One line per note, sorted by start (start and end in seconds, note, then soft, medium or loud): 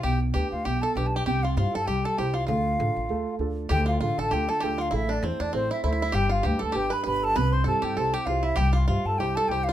0.03 0.30 B1 loud
0.03 0.33 B2 medium
0.03 0.19 G4 medium
0.03 0.20 G4 medium
0.03 0.19 G5 loud
0.34 0.42 D2 medium
0.34 0.59 D4 soft
0.34 0.62 G4 medium
0.34 0.58 G4 soft
0.34 0.52 G4 medium
0.34 0.59 B4 soft
0.34 0.50 G5 medium
0.52 0.63 D2 medium
0.52 0.66 F4 medium
0.52 0.66 F5 medium
0.65 0.80 B1 medium
0.65 0.95 B2 medium
0.65 0.83 G4 medium
0.65 0.83 G5 loud
0.82 0.96 A4 medium
0.82 0.95 A4 medium
0.82 0.94 A5 medium
0.95 1.22 B1 medium
0.95 1.20 D4 medium
0.95 1.05 G4 medium
0.95 1.20 G4 medium
0.95 1.06 G4 medium
0.95 1.21 B4 medium
0.95 1.08 G5 medium
1.07 1.16 A5 medium
1.15 1.25 G4 medium
1.15 1.24 G4 medium
1.15 1.26 G5 loud
1.26 1.53 C2 loud
1.26 1.56 C3 medium
1.26 1.44 G4 medium
1.26 1.45 G5 loud
1.43 1.55 F4 medium
1.43 1.56 F4 medium
1.43 1.57 F5 medium
1.57 1.64 G2 loud
1.57 1.81 E4 soft
1.57 1.74 F4 medium
1.57 1.73 F4 medium
1.57 1.82 G4 soft
1.57 1.82 C5 soft
1.57 1.76 F5 medium
1.73 1.86 G2 medium
1.73 1.87 A4 medium
1.73 1.88 A5 medium
1.86 2.02 C2 medium
1.86 2.17 G3 medium
1.86 2.05 G4 medium
1.86 2.03 G4 medium
1.86 2.06 G5 loud
2.04 2.16 A4 medium
2.04 2.17 A4 medium
2.04 2.19 A5 medium
2.18 2.45 C2 medium
2.18 2.42 E4 medium
2.18 2.35 G4 medium
2.18 2.42 G4 medium
2.18 2.34 G4 medium
2.18 2.42 C5 medium
2.18 2.36 G5 medium
2.34 2.45 F4 medium
2.34 2.46 F4 medium
2.34 2.47 F5 medium
2.47 2.74 D2 loud
2.47 2.78 D3 medium
2.47 3.35 F4 medium
2.47 3.35 F5 loud
2.79 2.87 A1 loud
2.79 3.03 D4 soft
2.79 3.04 F4 soft
2.79 3.04 A4 soft
2.96 3.08 A1 medium
3.09 3.24 D2 medium
3.09 3.39 A3 medium
3.39 3.66 D2 medium
3.39 3.64 D4 medium
3.39 3.64 F4 soft
3.39 3.65 A4 medium
3.69 3.97 D2 loud
3.69 4.89 D3 medium
3.69 3.86 G4 medium
3.69 3.89 G4 medium
3.69 3.87 G5 loud
3.86 3.99 F4 medium
3.86 4.00 F5 medium
4.00 4.08 A1 loud
4.00 4.31 D4 medium
4.00 4.18 F4 medium
4.00 4.17 F4 medium
4.00 4.31 F4 soft
4.00 4.32 A4 medium
4.00 4.21 F5 medium
4.17 4.29 A1 medium
4.17 4.31 A4 medium
4.17 4.34 A5 loud
4.31 4.46 D2 loud
4.31 4.61 D4 medium
4.31 4.62 F4 medium
4.31 4.47 G4 medium
4.31 4.49 G4 medium
4.31 4.62 A4 medium
4.31 4.51 G5 loud
4.47 4.53 A4 medium
4.47 4.62 A4 medium
4.47 4.64 A5 loud
4.60 4.89 D2 medium
4.60 4.92 D4 medium
4.60 4.92 F4 medium
4.60 4.77 G4 medium
4.60 4.80 G4 medium
4.60 4.93 A4 medium
4.60 4.83 G5 loud
4.78 4.92 F4 medium
4.78 4.90 F4 medium
4.78 4.97 F5 loud
4.91 5.19 A1 loud
4.91 6.11 A3 medium
4.91 5.08 E4 medium
4.91 5.10 E4 medium
4.96 5.14 E5 loud
5.09 5.19 D4 medium
5.09 5.22 D4 medium
5.13 5.27 D5 medium
5.21 5.30 E2 loud
5.21 5.39 C4 medium
5.21 5.41 C4 medium
5.21 5.24 D4 medium
5.21 5.53 E4 soft
5.21 5.53 A4 soft
5.21 5.53 C5 medium
5.25 5.43 C5 medium
5.40 5.52 E2 medium
5.40 5.52 D4 medium
5.40 5.54 D4 medium
5.40 5.54 D5 medium
5.53 5.68 A1 medium
5.53 5.71 C4 medium
5.53 5.62 C4 medium
5.53 5.83 E4 medium
5.53 5.83 A4 soft
5.53 5.83 C5 medium
5.53 5.70 C5 loud
5.64 5.72 C4 medium
5.71 5.83 C4 medium
5.71 5.83 E4 medium
5.71 5.84 E5 medium
5.83 6.10 D2 loud
5.83 6.15 E4 medium
5.83 5.91 E4 medium
5.83 6.14 E4 medium
5.83 6.14 A4 medium
5.83 6.14 C5 medium
5.83 6.17 E5 loud
5.92 6.01 E4 medium
6.02 6.13 E4 medium
6.12 6.40 G1 loud
6.12 7.32 G3 medium
6.12 6.29 G4 loud
6.12 6.30 G4 medium
6.12 6.33 G5 loud
6.29 6.44 F4 medium
6.29 6.45 F4 medium
6.29 6.48 F5 loud
6.42 6.52 D2 loud
6.42 6.73 D4 soft
6.42 6.55 G4 medium
6.42 6.60 G4 medium
6.42 6.74 G4 soft
6.42 6.74 B4 soft
6.42 6.63 G5 loud
6.56 6.61 G4 medium
6.56 6.73 A4 medium
6.56 6.74 A4 medium
6.62 6.74 D2 medium
6.62 6.77 A5 medium
6.72 6.90 G1 medium
6.72 7.04 D4 medium
6.72 6.90 G4 medium
6.72 7.04 G4 soft
6.72 7.05 B4 medium
6.72 6.94 G5 loud
6.90 7.02 B4 loud
6.90 7.04 B4 medium
6.90 7.06 B5 loud
7.04 7.32 G1 loud
7.04 7.35 D4 medium
7.04 7.35 G4 medium
7.04 7.33 B4 medium
7.04 7.23 B4 medium
7.04 7.36 B4 medium
7.04 7.26 B5 loud
7.22 7.35 A4 medium
7.22 7.38 A5 loud
7.36 7.62 C2 loud
7.36 8.55 C3 medium
7.36 7.64 B4 loud
7.36 7.52 B4 loud
7.36 7.54 B5 loud
7.52 7.67 C5 loud
7.52 7.66 C6 loud
7.64 7.73 G2 loud
7.64 7.96 E4 soft
7.64 7.96 G4 soft
7.64 7.81 A4 medium
7.64 7.95 A4 medium
7.64 7.97 C5 soft
7.64 7.86 A5 loud
7.82 7.95 G2 medium
7.82 7.97 G4 medium
7.82 8.00 G5 loud
7.97 8.12 C2 medium
7.97 8.27 E4 soft
7.97 8.27 G4 soft
7.97 8.13 A4 medium
7.97 8.15 A4 medium
7.97 8.27 C5 medium
7.97 8.15 A5 loud
8.14 8.26 G4 loud
8.14 8.28 G4 medium
8.14 8.27 G5 loud
8.26 8.53 C2 medium
8.26 8.57 E4 medium
8.26 8.45 F4 medium
8.26 8.44 F4 medium
8.26 8.58 G4 soft
8.26 8.58 C5 medium
8.26 8.45 F5 loud
8.43 8.56 E4 medium
8.43 8.58 E4 medium
8.43 8.58 E5 loud
8.56 8.84 C2 loud
8.56 9.73 G2 medium
8.56 8.73 G4 loud
8.56 8.76 G4 medium
8.56 8.74 G5 loud
8.73 8.86 F4 medium
8.73 8.87 F5 medium
8.87 8.96 G2 loud
8.87 9.16 F4 medium
8.87 9.06 F4 medium
8.87 9.18 G4 soft
8.87 9.18 C5 soft
8.87 9.18 E5 soft
8.87 9.07 F5 loud
9.05 9.16 G2 medium
9.05 9.19 A4 medium
9.05 9.19 A5 medium
9.18 9.33 C2 medium
9.18 9.48 E4 medium
9.18 9.48 G4 soft
9.18 9.35 G4 medium
9.18 9.37 G4 medium
9.18 9.49 C5 medium
9.18 9.37 G5 loud
9.35 9.50 A4 medium
9.35 9.49 A4 loud
9.35 9.50 A5 loud
9.48 9.73 C2 medium
9.48 9.73 E4 medium
9.48 9.67 G4 medium
9.48 9.73 G4 soft
9.48 9.68 G4 medium
9.48 9.73 C5 medium
9.48 9.65 G5 loud
9.64 9.73 F4 medium
9.64 9.73 F5 loud
9.69 9.73 F4 medium